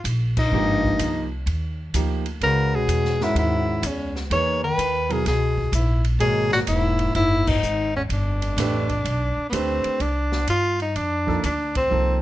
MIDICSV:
0, 0, Header, 1, 7, 480
1, 0, Start_track
1, 0, Tempo, 474684
1, 530, Time_signature, 4, 2, 24, 8
1, 12356, End_track
2, 0, Start_track
2, 0, Title_t, "Tenor saxophone"
2, 0, Program_c, 0, 66
2, 393, Note_on_c, 0, 63, 93
2, 1298, Note_off_c, 0, 63, 0
2, 2459, Note_on_c, 0, 70, 105
2, 2783, Note_on_c, 0, 68, 96
2, 2798, Note_off_c, 0, 70, 0
2, 3270, Note_on_c, 0, 64, 92
2, 3285, Note_off_c, 0, 68, 0
2, 3414, Note_off_c, 0, 64, 0
2, 3423, Note_on_c, 0, 64, 88
2, 3906, Note_on_c, 0, 61, 73
2, 3921, Note_off_c, 0, 64, 0
2, 4212, Note_off_c, 0, 61, 0
2, 4372, Note_on_c, 0, 73, 100
2, 4662, Note_off_c, 0, 73, 0
2, 4691, Note_on_c, 0, 71, 91
2, 5181, Note_on_c, 0, 68, 84
2, 5196, Note_off_c, 0, 71, 0
2, 5328, Note_off_c, 0, 68, 0
2, 5335, Note_on_c, 0, 68, 86
2, 5772, Note_off_c, 0, 68, 0
2, 5813, Note_on_c, 0, 64, 62
2, 6102, Note_off_c, 0, 64, 0
2, 6272, Note_on_c, 0, 68, 102
2, 6571, Note_off_c, 0, 68, 0
2, 6600, Note_on_c, 0, 66, 95
2, 6670, Note_off_c, 0, 66, 0
2, 6756, Note_on_c, 0, 64, 97
2, 7201, Note_off_c, 0, 64, 0
2, 7236, Note_on_c, 0, 64, 98
2, 7560, Note_on_c, 0, 63, 89
2, 7575, Note_off_c, 0, 64, 0
2, 8037, Note_off_c, 0, 63, 0
2, 8050, Note_on_c, 0, 61, 74
2, 8119, Note_off_c, 0, 61, 0
2, 8223, Note_on_c, 0, 62, 74
2, 9564, Note_off_c, 0, 62, 0
2, 9600, Note_on_c, 0, 59, 55
2, 9646, Note_on_c, 0, 60, 75
2, 9661, Note_off_c, 0, 59, 0
2, 10128, Note_on_c, 0, 62, 83
2, 10143, Note_off_c, 0, 60, 0
2, 10605, Note_off_c, 0, 62, 0
2, 10614, Note_on_c, 0, 65, 98
2, 10907, Note_off_c, 0, 65, 0
2, 10940, Note_on_c, 0, 63, 77
2, 11082, Note_on_c, 0, 62, 84
2, 11097, Note_off_c, 0, 63, 0
2, 11565, Note_off_c, 0, 62, 0
2, 11574, Note_on_c, 0, 62, 79
2, 11870, Note_off_c, 0, 62, 0
2, 11898, Note_on_c, 0, 60, 81
2, 12342, Note_off_c, 0, 60, 0
2, 12356, End_track
3, 0, Start_track
3, 0, Title_t, "Grand piano"
3, 0, Program_c, 1, 0
3, 532, Note_on_c, 1, 58, 61
3, 533, Note_on_c, 1, 53, 66
3, 540, Note_on_c, 1, 63, 61
3, 547, Note_on_c, 1, 67, 70
3, 1264, Note_off_c, 1, 58, 0
3, 1265, Note_off_c, 1, 53, 0
3, 1268, Note_off_c, 1, 63, 0
3, 1272, Note_off_c, 1, 67, 0
3, 1967, Note_on_c, 1, 53, 57
3, 1973, Note_on_c, 1, 58, 54
3, 1977, Note_on_c, 1, 63, 50
3, 1980, Note_on_c, 1, 67, 60
3, 2253, Note_off_c, 1, 53, 0
3, 2256, Note_off_c, 1, 58, 0
3, 2258, Note_off_c, 1, 63, 0
3, 2259, Note_off_c, 1, 67, 0
3, 2451, Note_on_c, 1, 56, 62
3, 2457, Note_on_c, 1, 61, 59
3, 2465, Note_on_c, 1, 66, 60
3, 2468, Note_on_c, 1, 71, 73
3, 3180, Note_off_c, 1, 56, 0
3, 3183, Note_off_c, 1, 61, 0
3, 3188, Note_off_c, 1, 66, 0
3, 3189, Note_off_c, 1, 71, 0
3, 3249, Note_on_c, 1, 56, 65
3, 3249, Note_on_c, 1, 61, 52
3, 3257, Note_on_c, 1, 70, 70
3, 3260, Note_on_c, 1, 66, 52
3, 3851, Note_off_c, 1, 56, 0
3, 3851, Note_off_c, 1, 61, 0
3, 3855, Note_off_c, 1, 70, 0
3, 3857, Note_off_c, 1, 66, 0
3, 4361, Note_on_c, 1, 58, 64
3, 4362, Note_on_c, 1, 63, 55
3, 4364, Note_on_c, 1, 68, 57
3, 4374, Note_on_c, 1, 73, 71
3, 4647, Note_off_c, 1, 58, 0
3, 4647, Note_off_c, 1, 63, 0
3, 4648, Note_off_c, 1, 68, 0
3, 4653, Note_off_c, 1, 73, 0
3, 5149, Note_on_c, 1, 54, 57
3, 5155, Note_on_c, 1, 59, 54
3, 5162, Note_on_c, 1, 64, 51
3, 5166, Note_on_c, 1, 70, 67
3, 5296, Note_off_c, 1, 54, 0
3, 5299, Note_off_c, 1, 59, 0
3, 5303, Note_off_c, 1, 64, 0
3, 5305, Note_off_c, 1, 70, 0
3, 6264, Note_on_c, 1, 58, 68
3, 6266, Note_on_c, 1, 75, 54
3, 6275, Note_on_c, 1, 68, 65
3, 6280, Note_on_c, 1, 73, 65
3, 7613, Note_off_c, 1, 58, 0
3, 7614, Note_off_c, 1, 75, 0
3, 7619, Note_off_c, 1, 68, 0
3, 7621, Note_off_c, 1, 73, 0
3, 8673, Note_on_c, 1, 57, 72
3, 8676, Note_on_c, 1, 62, 63
3, 8684, Note_on_c, 1, 67, 62
3, 8690, Note_on_c, 1, 71, 78
3, 8963, Note_off_c, 1, 57, 0
3, 8964, Note_off_c, 1, 62, 0
3, 8968, Note_off_c, 1, 67, 0
3, 8971, Note_off_c, 1, 71, 0
3, 9626, Note_on_c, 1, 57, 65
3, 9634, Note_on_c, 1, 62, 57
3, 9637, Note_on_c, 1, 67, 61
3, 9642, Note_on_c, 1, 71, 74
3, 10114, Note_off_c, 1, 57, 0
3, 10117, Note_off_c, 1, 62, 0
3, 10119, Note_off_c, 1, 67, 0
3, 10122, Note_off_c, 1, 71, 0
3, 11395, Note_on_c, 1, 53, 67
3, 11397, Note_on_c, 1, 58, 55
3, 11404, Note_on_c, 1, 63, 53
3, 11408, Note_on_c, 1, 69, 72
3, 11545, Note_off_c, 1, 53, 0
3, 11546, Note_off_c, 1, 58, 0
3, 11549, Note_off_c, 1, 63, 0
3, 11551, Note_off_c, 1, 69, 0
3, 12034, Note_on_c, 1, 53, 61
3, 12043, Note_on_c, 1, 58, 55
3, 12047, Note_on_c, 1, 63, 54
3, 12051, Note_on_c, 1, 69, 66
3, 12356, Note_off_c, 1, 53, 0
3, 12356, Note_off_c, 1, 58, 0
3, 12356, Note_off_c, 1, 63, 0
3, 12356, Note_off_c, 1, 69, 0
3, 12356, End_track
4, 0, Start_track
4, 0, Title_t, "Bass clarinet"
4, 0, Program_c, 2, 71
4, 379, Note_on_c, 2, 43, 93
4, 1291, Note_off_c, 2, 43, 0
4, 2452, Note_on_c, 2, 49, 91
4, 2791, Note_on_c, 2, 47, 83
4, 2807, Note_off_c, 2, 49, 0
4, 3272, Note_on_c, 2, 44, 65
4, 3287, Note_off_c, 2, 47, 0
4, 3402, Note_off_c, 2, 44, 0
4, 3409, Note_on_c, 2, 44, 77
4, 3898, Note_on_c, 2, 40, 61
4, 3913, Note_off_c, 2, 44, 0
4, 4207, Note_off_c, 2, 40, 0
4, 4371, Note_on_c, 2, 52, 78
4, 4661, Note_off_c, 2, 52, 0
4, 4688, Note_on_c, 2, 51, 91
4, 5179, Note_on_c, 2, 47, 68
4, 5194, Note_off_c, 2, 51, 0
4, 5327, Note_off_c, 2, 47, 0
4, 5353, Note_on_c, 2, 47, 80
4, 5781, Note_off_c, 2, 47, 0
4, 5819, Note_on_c, 2, 44, 55
4, 6105, Note_off_c, 2, 44, 0
4, 6270, Note_on_c, 2, 47, 81
4, 6569, Note_off_c, 2, 47, 0
4, 6593, Note_on_c, 2, 46, 73
4, 6666, Note_off_c, 2, 46, 0
4, 6754, Note_on_c, 2, 44, 76
4, 7200, Note_off_c, 2, 44, 0
4, 7225, Note_on_c, 2, 44, 78
4, 7563, Note_off_c, 2, 44, 0
4, 7563, Note_on_c, 2, 44, 83
4, 8030, Note_off_c, 2, 44, 0
4, 8036, Note_on_c, 2, 40, 60
4, 8108, Note_off_c, 2, 40, 0
4, 8198, Note_on_c, 2, 41, 68
4, 9599, Note_off_c, 2, 41, 0
4, 12356, End_track
5, 0, Start_track
5, 0, Title_t, "Upright bass"
5, 0, Program_c, 3, 32
5, 42, Note_on_c, 3, 34, 81
5, 511, Note_off_c, 3, 34, 0
5, 522, Note_on_c, 3, 32, 83
5, 990, Note_off_c, 3, 32, 0
5, 1003, Note_on_c, 3, 36, 76
5, 1469, Note_off_c, 3, 36, 0
5, 1478, Note_on_c, 3, 39, 84
5, 1946, Note_off_c, 3, 39, 0
5, 1960, Note_on_c, 3, 38, 89
5, 2426, Note_off_c, 3, 38, 0
5, 2433, Note_on_c, 3, 37, 69
5, 2902, Note_off_c, 3, 37, 0
5, 2908, Note_on_c, 3, 40, 74
5, 3378, Note_off_c, 3, 40, 0
5, 3385, Note_on_c, 3, 39, 79
5, 3856, Note_off_c, 3, 39, 0
5, 3867, Note_on_c, 3, 37, 89
5, 4337, Note_off_c, 3, 37, 0
5, 4350, Note_on_c, 3, 40, 81
5, 4818, Note_off_c, 3, 40, 0
5, 4830, Note_on_c, 3, 39, 75
5, 5298, Note_off_c, 3, 39, 0
5, 5307, Note_on_c, 3, 37, 77
5, 5776, Note_off_c, 3, 37, 0
5, 5785, Note_on_c, 3, 34, 89
5, 6250, Note_off_c, 3, 34, 0
5, 6256, Note_on_c, 3, 32, 86
5, 6730, Note_off_c, 3, 32, 0
5, 6747, Note_on_c, 3, 28, 81
5, 7216, Note_off_c, 3, 28, 0
5, 7227, Note_on_c, 3, 30, 81
5, 7696, Note_off_c, 3, 30, 0
5, 7711, Note_on_c, 3, 32, 82
5, 8179, Note_off_c, 3, 32, 0
5, 8183, Note_on_c, 3, 31, 82
5, 8655, Note_off_c, 3, 31, 0
5, 8662, Note_on_c, 3, 33, 88
5, 9135, Note_off_c, 3, 33, 0
5, 9146, Note_on_c, 3, 35, 82
5, 9449, Note_off_c, 3, 35, 0
5, 9629, Note_on_c, 3, 38, 86
5, 9931, Note_off_c, 3, 38, 0
5, 10110, Note_on_c, 3, 36, 73
5, 10582, Note_off_c, 3, 36, 0
5, 10593, Note_on_c, 3, 43, 70
5, 11065, Note_off_c, 3, 43, 0
5, 11079, Note_on_c, 3, 41, 75
5, 11549, Note_off_c, 3, 41, 0
5, 11565, Note_on_c, 3, 38, 85
5, 12034, Note_off_c, 3, 38, 0
5, 12046, Note_on_c, 3, 36, 76
5, 12356, Note_off_c, 3, 36, 0
5, 12356, End_track
6, 0, Start_track
6, 0, Title_t, "Muted upright bass strokes"
6, 9473, Note_on_c, 9, 29, 39
6, 9574, Note_off_c, 9, 29, 0
6, 9957, Note_on_c, 9, 29, 38
6, 10058, Note_off_c, 9, 29, 0
6, 12356, End_track
7, 0, Start_track
7, 0, Title_t, "Drums"
7, 50, Note_on_c, 9, 44, 62
7, 50, Note_on_c, 9, 51, 72
7, 151, Note_off_c, 9, 44, 0
7, 151, Note_off_c, 9, 51, 0
7, 372, Note_on_c, 9, 49, 77
7, 375, Note_on_c, 9, 36, 78
7, 473, Note_off_c, 9, 49, 0
7, 476, Note_off_c, 9, 36, 0
7, 853, Note_on_c, 9, 36, 54
7, 954, Note_off_c, 9, 36, 0
7, 1005, Note_on_c, 9, 44, 51
7, 1005, Note_on_c, 9, 51, 69
7, 1106, Note_off_c, 9, 44, 0
7, 1106, Note_off_c, 9, 51, 0
7, 1485, Note_on_c, 9, 51, 55
7, 1586, Note_off_c, 9, 51, 0
7, 1962, Note_on_c, 9, 44, 65
7, 1962, Note_on_c, 9, 51, 73
7, 2063, Note_off_c, 9, 44, 0
7, 2063, Note_off_c, 9, 51, 0
7, 2282, Note_on_c, 9, 51, 44
7, 2383, Note_off_c, 9, 51, 0
7, 2441, Note_on_c, 9, 51, 57
7, 2542, Note_off_c, 9, 51, 0
7, 2920, Note_on_c, 9, 44, 52
7, 2920, Note_on_c, 9, 51, 68
7, 3021, Note_off_c, 9, 44, 0
7, 3021, Note_off_c, 9, 51, 0
7, 3086, Note_on_c, 9, 38, 29
7, 3187, Note_off_c, 9, 38, 0
7, 3244, Note_on_c, 9, 38, 40
7, 3345, Note_off_c, 9, 38, 0
7, 3398, Note_on_c, 9, 51, 58
7, 3499, Note_off_c, 9, 51, 0
7, 3873, Note_on_c, 9, 44, 66
7, 3873, Note_on_c, 9, 51, 78
7, 3974, Note_off_c, 9, 44, 0
7, 3974, Note_off_c, 9, 51, 0
7, 4204, Note_on_c, 9, 38, 35
7, 4306, Note_off_c, 9, 38, 0
7, 4358, Note_on_c, 9, 51, 69
7, 4460, Note_off_c, 9, 51, 0
7, 4842, Note_on_c, 9, 44, 60
7, 4842, Note_on_c, 9, 51, 68
7, 4943, Note_off_c, 9, 44, 0
7, 4943, Note_off_c, 9, 51, 0
7, 5160, Note_on_c, 9, 51, 43
7, 5261, Note_off_c, 9, 51, 0
7, 5319, Note_on_c, 9, 51, 60
7, 5324, Note_on_c, 9, 38, 37
7, 5420, Note_off_c, 9, 51, 0
7, 5425, Note_off_c, 9, 38, 0
7, 5639, Note_on_c, 9, 36, 52
7, 5740, Note_off_c, 9, 36, 0
7, 5792, Note_on_c, 9, 44, 57
7, 5792, Note_on_c, 9, 51, 72
7, 5893, Note_off_c, 9, 44, 0
7, 5893, Note_off_c, 9, 51, 0
7, 6113, Note_on_c, 9, 51, 45
7, 6214, Note_off_c, 9, 51, 0
7, 6272, Note_on_c, 9, 51, 60
7, 6373, Note_off_c, 9, 51, 0
7, 6594, Note_on_c, 9, 38, 54
7, 6696, Note_off_c, 9, 38, 0
7, 6745, Note_on_c, 9, 44, 55
7, 6745, Note_on_c, 9, 51, 74
7, 6846, Note_off_c, 9, 44, 0
7, 6846, Note_off_c, 9, 51, 0
7, 7067, Note_on_c, 9, 51, 44
7, 7168, Note_off_c, 9, 51, 0
7, 7228, Note_on_c, 9, 51, 58
7, 7330, Note_off_c, 9, 51, 0
7, 7556, Note_on_c, 9, 36, 82
7, 7557, Note_on_c, 9, 49, 74
7, 7658, Note_off_c, 9, 36, 0
7, 7658, Note_off_c, 9, 49, 0
7, 7717, Note_on_c, 9, 44, 65
7, 7818, Note_off_c, 9, 44, 0
7, 8191, Note_on_c, 9, 51, 60
7, 8292, Note_off_c, 9, 51, 0
7, 8515, Note_on_c, 9, 51, 50
7, 8616, Note_off_c, 9, 51, 0
7, 8674, Note_on_c, 9, 44, 65
7, 8674, Note_on_c, 9, 51, 82
7, 8679, Note_on_c, 9, 38, 34
7, 8775, Note_off_c, 9, 44, 0
7, 8775, Note_off_c, 9, 51, 0
7, 8780, Note_off_c, 9, 38, 0
7, 8994, Note_on_c, 9, 51, 40
7, 8998, Note_on_c, 9, 36, 43
7, 9095, Note_off_c, 9, 51, 0
7, 9099, Note_off_c, 9, 36, 0
7, 9155, Note_on_c, 9, 51, 63
7, 9257, Note_off_c, 9, 51, 0
7, 9634, Note_on_c, 9, 44, 55
7, 9634, Note_on_c, 9, 51, 74
7, 9735, Note_off_c, 9, 44, 0
7, 9735, Note_off_c, 9, 51, 0
7, 9952, Note_on_c, 9, 51, 46
7, 10053, Note_off_c, 9, 51, 0
7, 10113, Note_on_c, 9, 51, 56
7, 10214, Note_off_c, 9, 51, 0
7, 10438, Note_on_c, 9, 38, 52
7, 10539, Note_off_c, 9, 38, 0
7, 10592, Note_on_c, 9, 44, 55
7, 10592, Note_on_c, 9, 51, 66
7, 10694, Note_off_c, 9, 44, 0
7, 10694, Note_off_c, 9, 51, 0
7, 10919, Note_on_c, 9, 51, 39
7, 11020, Note_off_c, 9, 51, 0
7, 11079, Note_on_c, 9, 51, 53
7, 11180, Note_off_c, 9, 51, 0
7, 11406, Note_on_c, 9, 36, 54
7, 11507, Note_off_c, 9, 36, 0
7, 11564, Note_on_c, 9, 44, 61
7, 11564, Note_on_c, 9, 51, 64
7, 11665, Note_off_c, 9, 44, 0
7, 11665, Note_off_c, 9, 51, 0
7, 11883, Note_on_c, 9, 51, 58
7, 11889, Note_on_c, 9, 36, 68
7, 11984, Note_off_c, 9, 51, 0
7, 11990, Note_off_c, 9, 36, 0
7, 12356, End_track
0, 0, End_of_file